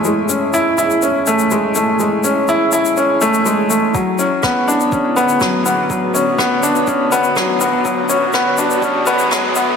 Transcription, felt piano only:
\new Staff \with { instrumentName = "Felt piano" } { \time 4/4 \key b \dorian \tempo 4 = 123 gis8 cis'8 e'8 e'8 cis'8 a8 gis8 a8 | gis8 cis'8 e'8 e'8 cis'8 a8 gis8 a8 | fis8 cis'8 b8 d'8 cis'8 b8 fis8 b8 | fis8 cis'8 b8 d'8 cis'8 b8 fis8 b8 |
fis8 cis'8 b8 d'8 cis'8 b8 fis8 b8 | }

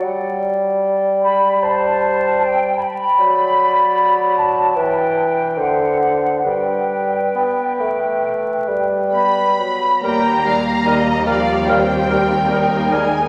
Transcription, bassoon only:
\new Staff \with { instrumentName = "Bassoon" } { \clef bass \time 4/4 \key g \major \tempo 4 = 73 g2.~ g8 r8 | fis2 e4 d4 | g4 b8 a4 g4 fis8 | \key ees \major g8 g8 g8 g8 g8 g8 g8 g8 | }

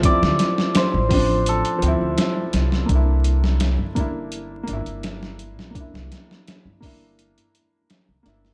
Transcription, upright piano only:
\new Staff \with { instrumentName = "Upright piano" } { \time 4/4 \key c \mixolydian \tempo 4 = 84 <f c' e'>4. <f c' d'>4 <f c' e'>4. | <bes d' e'>4. <bes d' e'>4 <bes d' e'>4. | <bes d' e'>4. <bes d' e'>4 r4 <bes d' e'>8 | }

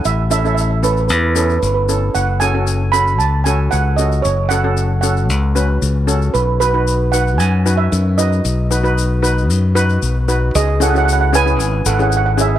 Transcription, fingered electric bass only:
\new Staff \with { instrumentName = "Fingered electric bass" } { \clef bass \time 4/4 \key fis \dorian \tempo 4 = 114 a,,2 e,4 g,,4 | fis,,2 cis,4 cis,4 | fis,,2 cis,4 cis,4 | b,,2 fis,4 fis,4 |
b,,2 fis,4 b,,4 | cis,2 gis,,8 gis,,4. | }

